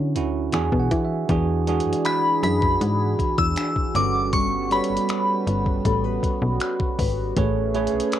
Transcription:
Already playing: tine electric piano D3 C#4 E4 F#4, fm bass D3, nylon-string guitar D3 F#3 C#4 F#4
0.15 fm bass D2, tine electric piano D3 C#4 E4 F#4, closed hi-hat
0.52 fm bass E2, nylon-string guitar E3, tine electric piano E3 D4 F#4 G#4 G#5, finger snap, closed hi-hat
0.72 fm bass B2, kick
0.80 tine electric piano F#5
0.91 fm bass E3, kick, closed hi-hat
1.05 tine electric piano E5
1.29 fm bass E2, tine electric piano E3 D4 F#4 G#4, nylon-string guitar E3, analog synth pad E3 D4 F#4 G#4, kick, closed hi-hat
1.67 tine electric piano E3 D4 F#4 G#4, nylon-string guitar G#3 D4 F#4, closed hi-hat
1.80 closed hi-hat
1.86 fm bass F#2
1.93 closed hi-hat
2.05 nylon-string guitar D4, synth bell B5, finger snap, closed hi-hat
2.43 fm bass F#2, synth bell B5, closed hi-hat
2.62 kick
2.81 fm bass G#2, nylon-string guitar F#4, closed hi-hat
3.19 kick, closed hi-hat
3.38 fm bass E2, synth bell E6, kick
3.56 nylon-string guitar D4, finger snap, closed hi-hat
3.76 kick
3.95 fm bass G1, tine electric piano G3 C#4 F#4 A4 B4, nylon-string guitar G3, analog synth pad G3 B3, synth bell D6, closed hi-hat
4.33 nylon-string guitar G3, synth bell C#6, kick, closed hi-hat
4.71 tine electric piano G3 F#4 A4 B4 C#5, nylon-string guitar C#4 F#4 B4, synth bell B5, closed hi-hat
4.84 closed hi-hat
4.90 fm bass G1
4.97 closed hi-hat
5.09 nylon-string guitar F#4, finger snap, closed hi-hat
5.47 fm bass G1, closed hi-hat
5.66 kick
5.85 fm bass A1, nylon-string guitar A4, kick, closed hi-hat
6.04 nylon-string guitar B4
6.23 kick, closed hi-hat
6.42 fm bass B1
6.60 nylon-string guitar F#4, finger snap, closed hi-hat
6.80 kick
6.99 fm bass G#1, nylon-string guitar B4, kick, open hi-hat
7.36 fm bass A1, analog synth pad A3 C#4 G#4, tine electric piano A3 G#4 B4 C#5, nylon-string guitar A3, kick, closed hi-hat
7.74 tine electric piano A3 G#4 B4 C#5, nylon-string guitar C#4 G#4 B4, closed hi-hat
7.87 closed hi-hat
7.94 fm bass B1
8.00 closed hi-hat
8.12 nylon-string guitar G#4, finger snap, closed hi-hat

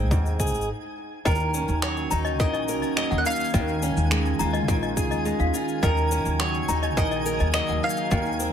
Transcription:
Already playing: upright bass G#1, steel-string acoustic guitar G#3 C4 D#4 G#4, mandolin D#5, synth texture G#5 G#6
0.11 upright bass D#2, steel-string acoustic guitar G#2, kick, shaker
0.26 shaker
0.39 steel-string acoustic guitar G#4, kick, shaker
0.47 shaker
0.54 upright bass G#1, shaker
0.61 shaker
1.25 upright bass D#2, ambient pad D#3 A#3 C#4 F#4, steel-string acoustic guitar D#3, mandolin A#4, toy piano D#5, synth texture G#5 G#6, kick, shaker
1.30 shaker
1.35 shaker
1.40 shaker
1.54 steel-string acoustic guitar C#4, shaker
1.68 upright bass D#2, shaker
1.82 steel-string acoustic guitar F#3, mandolin C#5, finger snap, shaker
1.97 shaker
2.11 upright bass D#2, steel-string acoustic guitar D#4, toy piano A#5, shaker
2.25 toy piano D#5, shaker
2.40 upright bass A#1, steel-string acoustic guitar D#3, mandolin D#5, kick, shaker
2.53 toy piano D#5, shaker
2.68 steel-string acoustic guitar A#4, shaker
2.82 upright bass D#2, toy piano D#5, shaker
2.97 steel-string acoustic guitar F#3, mandolin D#5, finger snap, shaker
3.11 upright bass D#2, toy piano F#5, shaker
3.18 mandolin F#5
3.26 steel-string acoustic guitar D#4, mandolin F5, shaker
3.30 shaker
3.35 shaker
3.40 shaker
3.44 shaker
3.49 shaker
3.53 upright bass D#2, steel-string acoustic guitar D#3, ambient pad G#3 C#4 F4, toy piano D#5, kick, shaker
3.68 shaker
3.82 steel-string acoustic guitar C#4, shaker
3.97 upright bass D#2, shaker
4.11 steel-string acoustic guitar G#3, finger snap, shaker
4.25 shaker
4.39 upright bass D#2, steel-string acoustic guitar F4, toy piano A#5, shaker
4.53 toy piano D#5, shaker
4.68 upright bass A#1, steel-string acoustic guitar D#3, kick, shaker
4.83 toy piano D#5, shaker
4.97 steel-string acoustic guitar G#4, kick, shaker
5.11 upright bass D#2, toy piano D#5, shaker
5.25 steel-string acoustic guitar G#3, shaker
5.40 upright bass D#2, toy piano F5, shaker
5.54 steel-string acoustic guitar F4, shaker
5.68 shaker
5.82 upright bass D#2, ambient pad C#3 F#3 A#3 F#4, steel-string acoustic guitar D#3, mandolin A#4, toy piano D#5, kick, shaker
5.97 shaker
6.11 steel-string acoustic guitar C#4, shaker
6.26 upright bass D#2, shaker
6.40 steel-string acoustic guitar F#3, mandolin C#5, finger snap, shaker
6.54 shaker
6.68 upright bass D#2, steel-string acoustic guitar D#4, toy piano A#5, shaker
6.83 toy piano D#5, shaker
6.97 upright bass A#1, steel-string acoustic guitar D#3, mandolin D#5, kick, shaker
7.11 toy piano D#5, shaker
7.26 steel-string acoustic guitar A#4, shaker
7.40 upright bass D#2, toy piano D#5, shaker
7.54 steel-string acoustic guitar F#3, mandolin D#5, finger snap, shaker
7.68 upright bass D#2, toy piano F#5, shaker
7.83 steel-string acoustic guitar D#4, mandolin F5
7.90 shaker
7.97 shaker
8.11 upright bass D#2, ambient pad D#3 G#3 C4, steel-string acoustic guitar D#3, toy piano D#5, kick, shaker
8.25 shaker
8.33 shaker
8.40 steel-string acoustic guitar C4, shaker

